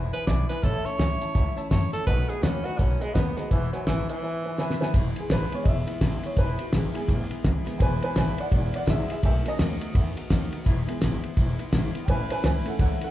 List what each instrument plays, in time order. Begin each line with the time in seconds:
Already playing: upright bass E1, steel-string acoustic guitar E3 G#3 B3 E4
0.13 steel-string acoustic guitar E3 G#3 B3 E4, tenor saxophone B4, upright piano B4 E5 G#5, muted upright bass stroke, closed hi-hat
0.26 upright bass B1, steel-string acoustic guitar E2 B2 E3 G#3 B3 E4, upright piano B4 E5 G#5, tenor saxophone D5, kick, snare, closed hi-hat
0.49 steel-string acoustic guitar E3 G#3 B3 E4, tenor saxophone B4, upright piano B4 E5 G#5, muted upright bass stroke, snare, closed hi-hat
0.62 upright bass A1, steel-string acoustic guitar A2 E3 A3 C#4 E4, tenor saxophone A4, upright piano C#5 E5 A5, kick, closed hi-hat
0.85 steel-string acoustic guitar A3 C#4 E4, upright piano C#5 E5 A5, tenor saxophone C#5, muted upright bass stroke, closed hi-hat
0.98 upright bass C#2, steel-string acoustic guitar A2 E3 A3 C#4 E4, upright piano C#5 E5 G#5, snare, closed hi-hat
1.20 steel-string acoustic guitar A3 C#4 E4, upright piano C#5 E5 A5, muted upright bass stroke, closed hi-hat
1.34 upright bass C#2, steel-string acoustic guitar E3 A3 C#4 E4, upright piano C#5 E5 A5, kick, closed hi-hat
1.56 steel-string acoustic guitar A3 C#4 E4, upright piano C#5 E5 A5, muted upright bass stroke, closed hi-hat
1.70 upright bass F#2, steel-string acoustic guitar A2 E3 A3 C#4 E4, upright piano C#5 E5 A5, tenor saxophone C#5, kick, snare, closed hi-hat
1.92 steel-string acoustic guitar A3 C#4 E4, tenor saxophone A4, upright piano C#5 E5 A5, muted upright bass stroke, snare, closed hi-hat
2.06 upright bass B1, steel-string acoustic guitar B2 D#3 A3 B3 F#4, tenor saxophone B4, upright piano B4 D#5 F#5, kick, closed hi-hat
2.28 steel-string acoustic guitar A3 B3 F#4, tenor saxophone G#4, upright piano B4 D#5 F#5, muted upright bass stroke, closed hi-hat
2.42 upright bass D#2, steel-string acoustic guitar B2 D#3 A3 B3 F#4, tenor saxophone C#4, upright piano B4 D#5 F#5, snare, closed hi-hat
2.64 steel-string acoustic guitar A3 B3 F#4, tenor saxophone F#4, upright piano B4 D#5 F#5, muted upright bass stroke, closed hi-hat
2.79 upright bass B1, steel-string acoustic guitar D#3 A3 B3 F#4, tenor saxophone C#4, upright piano B4 D#5 F#5, kick, closed hi-hat
3.00 tenor saxophone G#3, steel-string acoustic guitar A3 B3 F#4, upright piano B4 D#5 G#5, closed hi-hat
3.14 upright bass D#2, steel-string acoustic guitar B2 D#3 A3 B3 F#4, tenor saxophone B3, upright piano B4 D#5 F#5, kick, snare, closed hi-hat
3.36 tenor saxophone G#3, steel-string acoustic guitar A3 B3 F#4, upright piano B4 D#5 F#5, muted upright bass stroke, snare, closed hi-hat
3.50 upright bass E1, steel-string acoustic guitar E2 B2 E3 G#3 B3 E4, tenor saxophone E3, upright piano B4 E5 G#5, kick, closed hi-hat
3.72 steel-string acoustic guitar E3 G#3 B3 E4, tenor saxophone F#3, upright piano B4 E5 G#5, muted upright bass stroke, closed hi-hat
3.86 upright bass G#1, steel-string acoustic guitar E2 B2 E3 G#3 B3 E4, tenor saxophone E3, upright piano B4 E5 G#5, snare, closed hi-hat
4.08 tenor saxophone E3, steel-string acoustic guitar E3 G#3 B3 E4, upright piano B4 E5 G#5, muted upright bass stroke, closed hi-hat
4.21 steel-string acoustic guitar E3 G#3 B3 E4, upright piano B4 E5 G#5
4.44 steel-string acoustic guitar E3 G#3 B3 E4, upright piano B4 E5 G#5
4.57 steel-string acoustic guitar E2 B2 E3 G#3 B3 E4, upright piano B4 E5 G#5, snare
4.70 snare
4.79 steel-string acoustic guitar E3 G#3 B3 E4, upright piano B4 E5 G#5, snare
4.94 upright bass E1, steel-string acoustic guitar E2 B2 E3 G#3 B3 E4, kick, ride
5.16 steel-string acoustic guitar E3 G#3 B3 E4, upright piano G#4, muted upright bass stroke, ride
5.29 upright bass G#1, steel-string acoustic guitar E2 B2 E3 G#3 B3 E4, upright piano B4, snare, ride
5.51 upright piano E3 G#3 B3 C#5, steel-string acoustic guitar E3 G#3 B3 E4, muted upright bass stroke, ride
5.64 upright bass E1, steel-string acoustic guitar E3 G#3 B3 E4, upright piano D#5, kick, ride
5.68 upright piano E5
5.87 steel-string acoustic guitar E3 G#3 B3 E4, muted upright bass stroke, ride
6.01 upright bass G#1, steel-string acoustic guitar E2 B2 E3 G#3 B3 E4, kick, snare, ride
6.23 steel-string acoustic guitar E3 G#3 B3 E4, upright piano C#5, muted upright bass stroke, ride
6.37 upright bass E1, steel-string acoustic guitar E2 B2 E3 G#3 B3 E4, upright piano B4, kick, ride
6.59 steel-string acoustic guitar E3 G#3 B3 E4, upright piano F#4, muted upright bass stroke, ride
6.72 upright bass G#1, steel-string acoustic guitar E2 B2 E3 G#3 B3 E4, upright piano G#4, snare, ride
6.94 upright piano E3 G#3 B3 G#4, steel-string acoustic guitar E3 G#3 B3 E4, muted upright bass stroke, ride
7.07 upright bass A1, steel-string acoustic guitar E3 G#3 B3 E4, kick, ride
7.30 steel-string acoustic guitar E3 G#3 B3 E4, muted upright bass stroke, ride
7.44 upright bass C#2, steel-string acoustic guitar E2 B2 E3 G#3 B3 E4, kick, snare, ride
7.66 upright piano E3 G#3 B3, steel-string acoustic guitar E3 G#3 B3 E4, muted upright bass stroke, snare, ride
7.78 upright bass E1, steel-string acoustic guitar E2 B2 E3 G#3 B3 E4, upright piano E3 G#3 B3 B4 G5, kick, ride
7.82 upright piano G#5
8.00 steel-string acoustic guitar E3 G#3 B3 E4, upright piano B4, muted upright bass stroke, ride
8.04 upright piano G#5
8.14 upright bass G#1, steel-string acoustic guitar E2 B2 E3 G#3 B3 E4, upright piano B4, snare, ride
8.18 upright piano G#5
8.36 steel-string acoustic guitar E3 G#3 B3 E4, muted upright bass stroke, ride
8.40 upright piano D5 F#5
8.50 upright bass E1, steel-string acoustic guitar E3 G#3 B3 E4, upright piano E3 G#3 B3 D5, kick, ride
8.54 upright piano F#5
8.72 steel-string acoustic guitar E3 G#3 B3 E4, upright piano D5, muted upright bass stroke, ride
8.76 upright piano F#5
8.85 upright bass G#1, steel-string acoustic guitar E2 B2 E3 G#3 B3 E4, upright piano G#4, kick, snare, ride
8.90 upright piano E5
9.08 steel-string acoustic guitar E3 G#3 B3 E4, upright piano G#4 E5, muted upright bass stroke, ride
9.22 upright bass B1, steel-string acoustic guitar B2 D#3 A3 B3 F#4, upright piano G4, kick, ride
9.26 upright piano E5
9.44 upright piano D#3 A3 C#4, steel-string acoustic guitar A3 B3 F#4, ride
9.48 upright piano D#5
9.58 upright bass D#2, steel-string acoustic guitar B2 D#3 A3 B3 F#4, snare, ride
9.80 steel-string acoustic guitar A3 B3 F#4, muted upright bass stroke, ride
9.93 upright bass E2, steel-string acoustic guitar D#3 A3 B3 F#4, kick, ride
10.15 steel-string acoustic guitar A3 B3 F#4, muted upright bass stroke, ride
10.29 upright bass D#2, steel-string acoustic guitar B2 D#3 A3 B3 F#4, kick, snare, ride
10.51 steel-string acoustic guitar A3 B3 F#4, muted upright bass stroke, ride
10.65 upright bass E1, steel-string acoustic guitar E2 B2 E3 G#3 B3 E4, kick, ride
10.86 upright piano E3 G#3 B3, steel-string acoustic guitar E3 G#3 B3 E4, muted upright bass stroke, ride
11.01 upright bass G#1, steel-string acoustic guitar E2 B2 E3 G#3 B3 E4, snare, ride
11.23 steel-string acoustic guitar E3 G#3 B3 E4, muted upright bass stroke, ride
11.36 upright bass E1, steel-string acoustic guitar E3 G#3 B3 E4, kick, ride
11.58 steel-string acoustic guitar E3 G#3 B3 E4, muted upright bass stroke, ride
11.72 upright bass G#1, steel-string acoustic guitar E2 B2 E3 G#3 B3 E4, kick, snare, ride
11.94 steel-string acoustic guitar E3 G#3 B3 E4, muted upright bass stroke, ride
12.05 upright bass A1, steel-string acoustic guitar A2 E3 A3 C#4, upright piano G5, kick, ride
12.09 steel-string acoustic guitar E4, upright piano B4 G#5
12.29 steel-string acoustic guitar A3 C#4 E4, upright piano B4 G#5, muted upright bass stroke, ride
12.43 upright bass C#2, steel-string acoustic guitar A2 E3 A3 C#4 E4, upright piano B4 G#5, snare, ride
12.64 upright piano E3 A3 C#4 A4 F#5, steel-string acoustic guitar A3 C#4 E4, ride
12.78 upright bass C#2, steel-string acoustic guitar E3 A3 C#4 E4, upright piano A4 F#5, kick, ride
13.01 steel-string acoustic guitar A3 C#4 E4, upright piano A4 F#5, muted upright bass stroke, ride